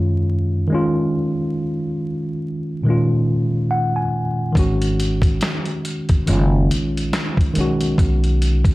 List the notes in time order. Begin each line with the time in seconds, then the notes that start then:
Already playing: F#2 D#3 G#3 C#4 F4
0.68 D#3 G#3
0.72 C#4 F4
2.83 A#2 D#3 G#3
2.88 C#4 F4
3.71 F#5
3.96 G#5
4.53 G#1 D#3 G#3, kick
4.57 C#4 F#4, closed hi-hat
4.82 closed hi-hat
5.00 closed hi-hat
5.22 kick, closed hi-hat
5.41 snare, closed hi-hat
5.65 closed hi-hat
5.85 closed hi-hat
6.09 F1, kick, closed hi-hat
6.27 F#1 D#3 G#3 C#4 F4, closed hi-hat
6.70 A#1, closed hi-hat
6.97 closed hi-hat
7.13 snare, closed hi-hat
7.37 kick, closed hi-hat
7.53 B1 D#3 G#3, closed hi-hat
7.58 C#4 F#4
7.81 closed hi-hat
7.98 B1, kick, closed hi-hat
8.24 closed hi-hat
8.42 closed hi-hat
8.64 kick, closed hi-hat